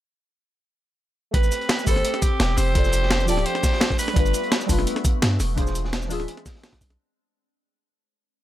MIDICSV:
0, 0, Header, 1, 6, 480
1, 0, Start_track
1, 0, Key_signature, 0, "minor"
1, 0, Tempo, 352941
1, 1824, Time_signature, 4, 2, 24, 8
1, 11466, End_track
2, 0, Start_track
2, 0, Title_t, "Alto saxophone"
2, 0, Program_c, 0, 65
2, 1826, Note_on_c, 0, 71, 103
2, 2538, Note_off_c, 0, 71, 0
2, 2546, Note_on_c, 0, 69, 100
2, 3025, Note_on_c, 0, 67, 98
2, 3045, Note_off_c, 0, 69, 0
2, 3506, Note_on_c, 0, 72, 116
2, 3527, Note_off_c, 0, 67, 0
2, 4459, Note_off_c, 0, 72, 0
2, 4467, Note_on_c, 0, 74, 112
2, 4705, Note_on_c, 0, 72, 106
2, 4725, Note_off_c, 0, 74, 0
2, 5420, Note_off_c, 0, 72, 0
2, 5428, Note_on_c, 0, 71, 100
2, 6331, Note_off_c, 0, 71, 0
2, 11466, End_track
3, 0, Start_track
3, 0, Title_t, "Synth stab"
3, 0, Program_c, 1, 62
3, 1783, Note_on_c, 1, 57, 79
3, 1811, Note_on_c, 1, 67, 70
3, 1838, Note_on_c, 1, 71, 71
3, 1866, Note_on_c, 1, 60, 86
3, 2093, Control_c, 1, 64, 127
3, 2485, Note_off_c, 1, 57, 0
3, 2502, Note_on_c, 1, 57, 74
3, 2510, Note_off_c, 1, 67, 0
3, 2523, Note_off_c, 1, 71, 0
3, 2531, Note_on_c, 1, 67, 71
3, 2537, Note_off_c, 1, 60, 0
3, 2558, Note_on_c, 1, 71, 71
3, 2587, Note_on_c, 1, 72, 88
3, 3695, Note_off_c, 1, 57, 0
3, 3701, Note_on_c, 1, 53, 78
3, 3710, Note_off_c, 1, 67, 0
3, 3723, Note_off_c, 1, 71, 0
3, 3730, Note_on_c, 1, 65, 73
3, 3738, Note_off_c, 1, 72, 0
3, 3758, Note_on_c, 1, 69, 74
3, 3760, Control_c, 1, 64, 0
3, 3786, Note_on_c, 1, 74, 84
3, 3959, Control_c, 1, 64, 127
3, 4407, Note_off_c, 1, 53, 0
3, 4423, Note_on_c, 1, 53, 92
3, 4429, Note_off_c, 1, 65, 0
3, 4443, Note_off_c, 1, 69, 0
3, 4450, Note_on_c, 1, 65, 89
3, 4457, Note_off_c, 1, 74, 0
3, 4478, Note_on_c, 1, 69, 88
3, 4506, Note_on_c, 1, 79, 104
3, 5390, Note_off_c, 1, 53, 0
3, 5403, Note_off_c, 1, 65, 0
3, 5417, Note_off_c, 1, 69, 0
3, 5431, Note_off_c, 1, 79, 0
3, 5444, Control_c, 1, 64, 0
3, 5621, Note_on_c, 1, 55, 79
3, 5649, Control_c, 1, 64, 127
3, 5649, Note_on_c, 1, 62, 70
3, 5677, Note_on_c, 1, 65, 73
3, 5705, Note_on_c, 1, 71, 87
3, 6325, Note_off_c, 1, 55, 0
3, 6342, Note_on_c, 1, 55, 78
3, 6349, Note_off_c, 1, 62, 0
3, 6363, Note_off_c, 1, 65, 0
3, 6370, Note_on_c, 1, 62, 72
3, 6377, Note_off_c, 1, 71, 0
3, 6397, Note_on_c, 1, 65, 71
3, 6426, Note_on_c, 1, 71, 86
3, 7535, Note_off_c, 1, 55, 0
3, 7544, Note_on_c, 1, 52, 81
3, 7549, Note_off_c, 1, 62, 0
3, 7563, Note_off_c, 1, 65, 0
3, 7563, Note_on_c, 1, 62, 69
3, 7577, Note_off_c, 1, 71, 0
3, 7584, Note_on_c, 1, 65, 70
3, 7602, Control_c, 1, 64, 0
3, 7606, Note_on_c, 1, 68, 72
3, 7626, Note_on_c, 1, 72, 89
3, 7814, Control_c, 1, 64, 127
3, 8245, Note_off_c, 1, 52, 0
3, 8262, Note_on_c, 1, 52, 95
3, 8266, Note_off_c, 1, 62, 0
3, 8277, Note_off_c, 1, 65, 0
3, 8283, Note_on_c, 1, 62, 82
3, 8287, Note_off_c, 1, 68, 0
3, 8298, Note_off_c, 1, 72, 0
3, 8302, Note_on_c, 1, 65, 84
3, 8325, Note_on_c, 1, 68, 85
3, 8346, Note_on_c, 1, 76, 102
3, 9455, Note_off_c, 1, 52, 0
3, 9465, Note_off_c, 1, 62, 0
3, 9475, Note_off_c, 1, 65, 0
3, 9487, Note_off_c, 1, 68, 0
3, 9497, Note_off_c, 1, 76, 0
3, 9522, Control_c, 1, 64, 0
3, 11466, End_track
4, 0, Start_track
4, 0, Title_t, "Ambient pad"
4, 0, Program_c, 2, 92
4, 1823, Note_on_c, 2, 60, 75
4, 1823, Note_on_c, 2, 67, 89
4, 3724, Note_off_c, 2, 60, 0
4, 3724, Note_off_c, 2, 67, 0
4, 3741, Note_on_c, 2, 62, 74
4, 3742, Note_on_c, 2, 57, 85
4, 3742, Note_on_c, 2, 67, 88
4, 5405, Note_off_c, 2, 62, 0
4, 5406, Note_off_c, 2, 67, 0
4, 5424, Note_on_c, 2, 59, 76
4, 7544, Note_off_c, 2, 57, 0
4, 7562, Note_off_c, 2, 59, 0
4, 7583, Note_on_c, 2, 60, 75
4, 7583, Note_on_c, 2, 62, 75
4, 7585, Note_on_c, 2, 56, 86
4, 9484, Note_off_c, 2, 60, 0
4, 9484, Note_off_c, 2, 62, 0
4, 9485, Note_off_c, 2, 56, 0
4, 11466, End_track
5, 0, Start_track
5, 0, Title_t, "808-style bass"
5, 0, Program_c, 3, 38
5, 1822, Note_on_c, 3, 33, 99
5, 2040, Note_off_c, 3, 33, 0
5, 2542, Note_on_c, 3, 31, 85
5, 2760, Note_off_c, 3, 31, 0
5, 3264, Note_on_c, 3, 28, 93
5, 3481, Note_off_c, 3, 28, 0
5, 3502, Note_on_c, 3, 29, 86
5, 4463, Note_on_c, 3, 26, 85
5, 4484, Note_off_c, 3, 29, 0
5, 4681, Note_off_c, 3, 26, 0
5, 5663, Note_on_c, 3, 31, 100
5, 5881, Note_off_c, 3, 31, 0
5, 6383, Note_on_c, 3, 29, 87
5, 6600, Note_off_c, 3, 29, 0
5, 7104, Note_on_c, 3, 43, 95
5, 7321, Note_off_c, 3, 43, 0
5, 7343, Note_on_c, 3, 28, 90
5, 8303, Note_on_c, 3, 26, 86
5, 8323, Note_off_c, 3, 28, 0
5, 8520, Note_off_c, 3, 26, 0
5, 9263, Note_on_c, 3, 35, 87
5, 9480, Note_off_c, 3, 35, 0
5, 11466, End_track
6, 0, Start_track
6, 0, Title_t, "Drums"
6, 1822, Note_on_c, 9, 36, 117
6, 1822, Note_on_c, 9, 42, 91
6, 1823, Note_off_c, 9, 42, 0
6, 1823, Note_on_c, 9, 42, 98
6, 1949, Note_on_c, 9, 82, 27
6, 1956, Note_off_c, 9, 42, 0
6, 1956, Note_on_c, 9, 42, 43
6, 1958, Note_off_c, 9, 36, 0
6, 2063, Note_off_c, 9, 42, 0
6, 2063, Note_off_c, 9, 82, 0
6, 2063, Note_on_c, 9, 42, 63
6, 2063, Note_on_c, 9, 82, 57
6, 2067, Note_off_c, 9, 42, 0
6, 2067, Note_on_c, 9, 42, 72
6, 2194, Note_off_c, 9, 42, 0
6, 2194, Note_on_c, 9, 42, 44
6, 2199, Note_off_c, 9, 82, 0
6, 2297, Note_on_c, 9, 38, 125
6, 2302, Note_off_c, 9, 38, 0
6, 2302, Note_off_c, 9, 42, 0
6, 2302, Note_on_c, 9, 38, 118
6, 2302, Note_on_c, 9, 42, 98
6, 2305, Note_off_c, 9, 42, 0
6, 2305, Note_on_c, 9, 42, 94
6, 2429, Note_on_c, 9, 82, 29
6, 2438, Note_off_c, 9, 38, 0
6, 2441, Note_off_c, 9, 42, 0
6, 2537, Note_on_c, 9, 42, 73
6, 2542, Note_on_c, 9, 36, 63
6, 2543, Note_off_c, 9, 82, 0
6, 2543, Note_on_c, 9, 46, 77
6, 2543, Note_on_c, 9, 82, 61
6, 2669, Note_on_c, 9, 40, 38
6, 2673, Note_off_c, 9, 42, 0
6, 2678, Note_off_c, 9, 36, 0
6, 2679, Note_off_c, 9, 46, 0
6, 2679, Note_off_c, 9, 82, 0
6, 2783, Note_on_c, 9, 42, 99
6, 2784, Note_off_c, 9, 42, 0
6, 2784, Note_on_c, 9, 42, 91
6, 2805, Note_off_c, 9, 40, 0
6, 2908, Note_on_c, 9, 40, 49
6, 2920, Note_off_c, 9, 42, 0
6, 3022, Note_on_c, 9, 36, 106
6, 3022, Note_on_c, 9, 42, 69
6, 3022, Note_on_c, 9, 82, 61
6, 3029, Note_off_c, 9, 42, 0
6, 3029, Note_on_c, 9, 42, 65
6, 3044, Note_off_c, 9, 40, 0
6, 3158, Note_off_c, 9, 36, 0
6, 3158, Note_off_c, 9, 82, 0
6, 3165, Note_off_c, 9, 42, 0
6, 3260, Note_on_c, 9, 38, 105
6, 3263, Note_off_c, 9, 38, 0
6, 3263, Note_on_c, 9, 38, 115
6, 3263, Note_on_c, 9, 42, 100
6, 3276, Note_off_c, 9, 42, 0
6, 3276, Note_on_c, 9, 42, 95
6, 3399, Note_off_c, 9, 38, 0
6, 3412, Note_off_c, 9, 42, 0
6, 3502, Note_on_c, 9, 42, 71
6, 3504, Note_on_c, 9, 40, 39
6, 3504, Note_on_c, 9, 46, 79
6, 3504, Note_on_c, 9, 82, 62
6, 3638, Note_off_c, 9, 42, 0
6, 3640, Note_off_c, 9, 40, 0
6, 3640, Note_off_c, 9, 46, 0
6, 3640, Note_off_c, 9, 82, 0
6, 3742, Note_on_c, 9, 36, 127
6, 3743, Note_on_c, 9, 42, 97
6, 3747, Note_off_c, 9, 42, 0
6, 3747, Note_on_c, 9, 42, 85
6, 3869, Note_on_c, 9, 82, 26
6, 3876, Note_on_c, 9, 38, 48
6, 3878, Note_off_c, 9, 36, 0
6, 3883, Note_off_c, 9, 42, 0
6, 3984, Note_off_c, 9, 82, 0
6, 3984, Note_on_c, 9, 42, 68
6, 3984, Note_on_c, 9, 82, 57
6, 3992, Note_off_c, 9, 42, 0
6, 3992, Note_on_c, 9, 42, 69
6, 4012, Note_off_c, 9, 38, 0
6, 4114, Note_on_c, 9, 38, 52
6, 4120, Note_off_c, 9, 82, 0
6, 4128, Note_off_c, 9, 42, 0
6, 4223, Note_off_c, 9, 38, 0
6, 4223, Note_on_c, 9, 38, 125
6, 4223, Note_on_c, 9, 42, 95
6, 4229, Note_off_c, 9, 38, 0
6, 4229, Note_on_c, 9, 38, 114
6, 4342, Note_off_c, 9, 38, 0
6, 4342, Note_on_c, 9, 38, 38
6, 4348, Note_on_c, 9, 82, 29
6, 4359, Note_off_c, 9, 42, 0
6, 4462, Note_off_c, 9, 82, 0
6, 4462, Note_on_c, 9, 46, 79
6, 4462, Note_on_c, 9, 82, 59
6, 4464, Note_on_c, 9, 42, 71
6, 4478, Note_off_c, 9, 38, 0
6, 4589, Note_on_c, 9, 40, 40
6, 4598, Note_off_c, 9, 46, 0
6, 4598, Note_off_c, 9, 82, 0
6, 4600, Note_off_c, 9, 42, 0
6, 4703, Note_on_c, 9, 42, 93
6, 4706, Note_off_c, 9, 42, 0
6, 4706, Note_on_c, 9, 42, 84
6, 4725, Note_off_c, 9, 40, 0
6, 4829, Note_on_c, 9, 40, 49
6, 4842, Note_off_c, 9, 42, 0
6, 4943, Note_on_c, 9, 36, 106
6, 4944, Note_on_c, 9, 38, 39
6, 4944, Note_on_c, 9, 42, 68
6, 4944, Note_on_c, 9, 46, 71
6, 4944, Note_on_c, 9, 82, 58
6, 4965, Note_off_c, 9, 40, 0
6, 5070, Note_off_c, 9, 38, 0
6, 5070, Note_on_c, 9, 38, 50
6, 5079, Note_off_c, 9, 36, 0
6, 5080, Note_off_c, 9, 42, 0
6, 5080, Note_off_c, 9, 46, 0
6, 5080, Note_off_c, 9, 82, 0
6, 5176, Note_off_c, 9, 38, 0
6, 5176, Note_on_c, 9, 38, 119
6, 5184, Note_off_c, 9, 38, 0
6, 5184, Note_on_c, 9, 38, 122
6, 5184, Note_on_c, 9, 42, 94
6, 5188, Note_off_c, 9, 42, 0
6, 5188, Note_on_c, 9, 42, 85
6, 5308, Note_on_c, 9, 36, 61
6, 5309, Note_on_c, 9, 40, 39
6, 5314, Note_off_c, 9, 38, 0
6, 5314, Note_on_c, 9, 38, 54
6, 5324, Note_off_c, 9, 42, 0
6, 5424, Note_on_c, 9, 46, 84
6, 5424, Note_on_c, 9, 82, 61
6, 5425, Note_on_c, 9, 42, 67
6, 5444, Note_off_c, 9, 36, 0
6, 5445, Note_off_c, 9, 40, 0
6, 5450, Note_off_c, 9, 38, 0
6, 5549, Note_on_c, 9, 40, 55
6, 5560, Note_off_c, 9, 46, 0
6, 5560, Note_off_c, 9, 82, 0
6, 5561, Note_off_c, 9, 42, 0
6, 5659, Note_on_c, 9, 42, 74
6, 5663, Note_off_c, 9, 42, 0
6, 5663, Note_on_c, 9, 36, 127
6, 5663, Note_on_c, 9, 42, 89
6, 5685, Note_off_c, 9, 40, 0
6, 5788, Note_off_c, 9, 42, 0
6, 5788, Note_on_c, 9, 42, 44
6, 5790, Note_on_c, 9, 82, 27
6, 5799, Note_off_c, 9, 36, 0
6, 5904, Note_off_c, 9, 42, 0
6, 5904, Note_off_c, 9, 82, 0
6, 5904, Note_on_c, 9, 42, 60
6, 5904, Note_on_c, 9, 82, 54
6, 5906, Note_off_c, 9, 42, 0
6, 5906, Note_on_c, 9, 42, 65
6, 6031, Note_off_c, 9, 42, 0
6, 6031, Note_on_c, 9, 42, 44
6, 6040, Note_off_c, 9, 82, 0
6, 6143, Note_off_c, 9, 42, 0
6, 6143, Note_on_c, 9, 38, 120
6, 6143, Note_on_c, 9, 42, 91
6, 6144, Note_off_c, 9, 42, 0
6, 6144, Note_on_c, 9, 42, 85
6, 6146, Note_off_c, 9, 38, 0
6, 6146, Note_on_c, 9, 38, 100
6, 6269, Note_on_c, 9, 82, 27
6, 6280, Note_off_c, 9, 42, 0
6, 6282, Note_off_c, 9, 38, 0
6, 6381, Note_on_c, 9, 42, 67
6, 6383, Note_off_c, 9, 82, 0
6, 6383, Note_on_c, 9, 36, 66
6, 6383, Note_on_c, 9, 46, 82
6, 6383, Note_on_c, 9, 82, 57
6, 6508, Note_on_c, 9, 40, 38
6, 6517, Note_off_c, 9, 42, 0
6, 6519, Note_off_c, 9, 36, 0
6, 6519, Note_off_c, 9, 46, 0
6, 6519, Note_off_c, 9, 82, 0
6, 6623, Note_on_c, 9, 42, 96
6, 6631, Note_off_c, 9, 42, 0
6, 6631, Note_on_c, 9, 42, 77
6, 6644, Note_off_c, 9, 40, 0
6, 6749, Note_on_c, 9, 40, 48
6, 6767, Note_off_c, 9, 42, 0
6, 6863, Note_on_c, 9, 36, 112
6, 6864, Note_on_c, 9, 42, 66
6, 6864, Note_on_c, 9, 82, 57
6, 6866, Note_off_c, 9, 42, 0
6, 6866, Note_on_c, 9, 42, 66
6, 6885, Note_off_c, 9, 40, 0
6, 6999, Note_off_c, 9, 36, 0
6, 7000, Note_off_c, 9, 82, 0
6, 7002, Note_off_c, 9, 42, 0
6, 7103, Note_on_c, 9, 38, 122
6, 7103, Note_on_c, 9, 42, 90
6, 7106, Note_off_c, 9, 38, 0
6, 7106, Note_on_c, 9, 38, 112
6, 7239, Note_off_c, 9, 42, 0
6, 7242, Note_off_c, 9, 38, 0
6, 7341, Note_on_c, 9, 42, 78
6, 7343, Note_on_c, 9, 40, 41
6, 7343, Note_on_c, 9, 46, 83
6, 7343, Note_on_c, 9, 82, 59
6, 7477, Note_off_c, 9, 42, 0
6, 7479, Note_off_c, 9, 40, 0
6, 7479, Note_off_c, 9, 46, 0
6, 7479, Note_off_c, 9, 82, 0
6, 7583, Note_on_c, 9, 36, 127
6, 7584, Note_on_c, 9, 42, 89
6, 7595, Note_off_c, 9, 42, 0
6, 7595, Note_on_c, 9, 42, 80
6, 7705, Note_on_c, 9, 38, 42
6, 7709, Note_on_c, 9, 82, 28
6, 7719, Note_off_c, 9, 36, 0
6, 7731, Note_off_c, 9, 42, 0
6, 7824, Note_off_c, 9, 82, 0
6, 7824, Note_on_c, 9, 42, 62
6, 7824, Note_on_c, 9, 82, 56
6, 7841, Note_off_c, 9, 38, 0
6, 7950, Note_on_c, 9, 38, 56
6, 7960, Note_off_c, 9, 42, 0
6, 7960, Note_off_c, 9, 82, 0
6, 8065, Note_off_c, 9, 38, 0
6, 8065, Note_on_c, 9, 38, 127
6, 8065, Note_on_c, 9, 42, 89
6, 8067, Note_off_c, 9, 38, 0
6, 8067, Note_on_c, 9, 38, 105
6, 8071, Note_off_c, 9, 42, 0
6, 8071, Note_on_c, 9, 42, 82
6, 8189, Note_on_c, 9, 82, 29
6, 8192, Note_off_c, 9, 38, 0
6, 8192, Note_on_c, 9, 38, 41
6, 8207, Note_off_c, 9, 42, 0
6, 8303, Note_off_c, 9, 82, 0
6, 8303, Note_on_c, 9, 46, 82
6, 8303, Note_on_c, 9, 82, 56
6, 8313, Note_on_c, 9, 42, 73
6, 8328, Note_off_c, 9, 38, 0
6, 8429, Note_on_c, 9, 40, 39
6, 8439, Note_off_c, 9, 46, 0
6, 8439, Note_off_c, 9, 82, 0
6, 8449, Note_off_c, 9, 42, 0
6, 8543, Note_on_c, 9, 42, 96
6, 8549, Note_off_c, 9, 42, 0
6, 8549, Note_on_c, 9, 42, 80
6, 8565, Note_off_c, 9, 40, 0
6, 8669, Note_on_c, 9, 40, 46
6, 8685, Note_off_c, 9, 42, 0
6, 8782, Note_on_c, 9, 36, 107
6, 8782, Note_on_c, 9, 46, 79
6, 8784, Note_on_c, 9, 38, 40
6, 8784, Note_on_c, 9, 42, 66
6, 8784, Note_on_c, 9, 82, 59
6, 8805, Note_off_c, 9, 40, 0
6, 8913, Note_off_c, 9, 38, 0
6, 8913, Note_on_c, 9, 38, 52
6, 8918, Note_off_c, 9, 36, 0
6, 8918, Note_off_c, 9, 46, 0
6, 8920, Note_off_c, 9, 42, 0
6, 8920, Note_off_c, 9, 82, 0
6, 9021, Note_on_c, 9, 42, 64
6, 9024, Note_off_c, 9, 38, 0
6, 9024, Note_off_c, 9, 42, 0
6, 9024, Note_on_c, 9, 38, 120
6, 9024, Note_on_c, 9, 42, 92
6, 9028, Note_off_c, 9, 38, 0
6, 9028, Note_on_c, 9, 38, 88
6, 9080, Note_off_c, 9, 38, 0
6, 9080, Note_on_c, 9, 38, 94
6, 9091, Note_off_c, 9, 42, 0
6, 9091, Note_on_c, 9, 42, 68
6, 9148, Note_on_c, 9, 36, 63
6, 9149, Note_on_c, 9, 40, 36
6, 9151, Note_off_c, 9, 38, 0
6, 9151, Note_on_c, 9, 38, 112
6, 9154, Note_off_c, 9, 42, 0
6, 9154, Note_on_c, 9, 42, 84
6, 9264, Note_off_c, 9, 42, 0
6, 9264, Note_on_c, 9, 42, 71
6, 9264, Note_on_c, 9, 46, 86
6, 9264, Note_on_c, 9, 82, 62
6, 9284, Note_off_c, 9, 36, 0
6, 9285, Note_off_c, 9, 40, 0
6, 9287, Note_off_c, 9, 38, 0
6, 9389, Note_on_c, 9, 40, 52
6, 9400, Note_off_c, 9, 42, 0
6, 9400, Note_off_c, 9, 46, 0
6, 9400, Note_off_c, 9, 82, 0
6, 9525, Note_off_c, 9, 40, 0
6, 11466, End_track
0, 0, End_of_file